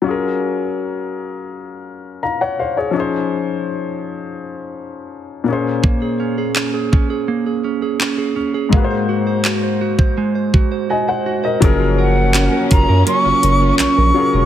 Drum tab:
HH |----------------|----------------|----------------|----------------|
CP |----------------|----------------|----x-------x---|----x-----------|
BD |----------------|----------------|o-----o---------|o------o--o-----|

HH |x---x-x-x-x-x---|
CP |----x-------x---|
BD |o-----o---------|